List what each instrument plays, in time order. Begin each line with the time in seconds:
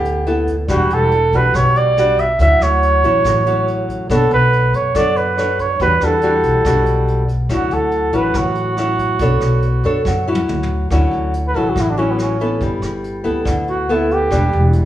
Already playing: upright bass D2, nylon-string guitar D3 B3 E4 A4, flugelhorn G4
0.05 closed hi-hat
0.26 nylon-string guitar B3 E4 A4, closed hi-hat
0.47 kick, closed hi-hat
0.68 upright bass E1, nylon-string guitar E3 G3 D4 F#4, flugelhorn F#4, kick, cross-stick, closed hi-hat
0.90 upright bass E1, flugelhorn A4, closed hi-hat
1.11 closed hi-hat
1.32 upright bass B1, nylon-string guitar G3 D4 F#4, kick, closed hi-hat
1.36 flugelhorn B4
1.54 upright bass B1, nylon-string guitar B2, flugelhorn C#5, kick, cross-stick, closed hi-hat
1.76 flugelhorn D5, closed hi-hat
1.97 nylon-string guitar G3 D4 F#4, cross-stick, closed hi-hat
2.18 flugelhorn E5, kick, closed hi-hat
2.39 upright bass D2, nylon-string guitar D3 F#3 C#4 E4, flugelhorn E5, kick, closed hi-hat
2.60 upright bass D2, flugelhorn C#5, cross-stick, closed hi-hat
2.83 closed hi-hat
3.03 upright bass A1, nylon-string guitar F#3 C#4 E4, kick, closed hi-hat
3.24 upright bass A1, nylon-string guitar A2, kick, cross-stick, closed hi-hat
3.46 nylon-string guitar F#3 C#4 E4, closed hi-hat
3.68 closed hi-hat
3.89 kick, closed hi-hat
4.10 upright bass B1, nylon-string guitar B3 D4 A4 C#5, flugelhorn A4, kick, cross-stick, closed hi-hat
4.31 upright bass B1, flugelhorn B4, closed hi-hat
4.53 closed hi-hat
4.73 upright bass F#2, flugelhorn C#5, kick, closed hi-hat
4.95 upright bass F#2, nylon-string guitar F#3 D4 A4 C#5, flugelhorn D5, kick, cross-stick, closed hi-hat
5.16 flugelhorn B4, closed hi-hat
5.38 nylon-string guitar D4 A4 C#5, cross-stick, closed hi-hat
5.59 flugelhorn C#5, kick, closed hi-hat
5.80 upright bass E2, nylon-string guitar E3 G3 D4 F#4, flugelhorn B4, kick, closed hi-hat
6.01 upright bass E2, nylon-string guitar G3 D4 F#4, flugelhorn A4, cross-stick, closed hi-hat
6.21 nylon-string guitar G3 D4 F#4, closed hi-hat
6.43 upright bass B1, kick, closed hi-hat
6.65 upright bass B1, nylon-string guitar B2 G3 D4 F#4, kick, cross-stick, closed hi-hat
6.86 closed hi-hat
7.08 closed hi-hat
7.28 kick, closed hi-hat
7.49 upright bass D2, nylon-string guitar D3 F#3 C#4 E4, flugelhorn F#4, kick, cross-stick, closed hi-hat
7.71 upright bass D2, flugelhorn A4, closed hi-hat
7.91 closed hi-hat
8.12 upright bass A1, nylon-string guitar F#3 C#4 E4, flugelhorn B4, kick, closed hi-hat
8.34 upright bass A1, nylon-string guitar A2, flugelhorn F#4, kick, cross-stick, closed hi-hat
8.55 closed hi-hat
8.77 nylon-string guitar F#3 C#4 E4, cross-stick, closed hi-hat
8.98 kick, closed hi-hat
9.19 upright bass B1, nylon-string guitar B3 D4 A4 C#5, kick, closed hi-hat
9.41 upright bass B1, cross-stick, closed hi-hat
9.62 closed hi-hat
9.83 upright bass F#2, nylon-string guitar D4 A4 C#5, kick, closed hi-hat
10.05 upright bass F#2, nylon-string guitar F#3, kick, snare
10.28 nylon-string guitar F#3 C#4 E4
10.35 high tom
10.48 upright bass D2, mid tom
10.63 mid tom
10.90 upright bass D2, nylon-string guitar D3 F#3 C#4 E4, kick, cross-stick, closed hi-hat
11.11 upright bass D2, closed hi-hat
11.33 closed hi-hat
11.47 flugelhorn B4
11.54 upright bass A1, nylon-string guitar F#3 C#4 E4, flugelhorn A4, closed hi-hat
11.70 flugelhorn F#4
11.76 upright bass A1, nylon-string guitar A2, kick, cross-stick, closed hi-hat
11.81 flugelhorn E4
11.90 flugelhorn D4
11.98 nylon-string guitar F#3 C#4 E4, flugelhorn C#4, closed hi-hat
12.11 flugelhorn B3
12.19 cross-stick, closed hi-hat
12.23 flugelhorn C#4
12.40 nylon-string guitar B3 E4 A4, closed hi-hat
12.61 upright bass G1, nylon-string guitar G3, kick, closed hi-hat
12.82 upright bass G1, cross-stick, closed hi-hat
13.04 closed hi-hat
13.24 upright bass D2, nylon-string guitar B3 E4 A4, closed hi-hat
13.45 upright bass D2, nylon-string guitar D3, kick, cross-stick, closed hi-hat
13.68 flugelhorn F#4, closed hi-hat
13.89 nylon-string guitar B3 E4 A4, flugelhorn E4, closed hi-hat
14.11 flugelhorn G4, closed hi-hat
14.31 upright bass E1, nylon-string guitar E3 G3 D4, kick, cross-stick, closed hi-hat
14.52 upright bass E1, closed hi-hat
14.73 closed hi-hat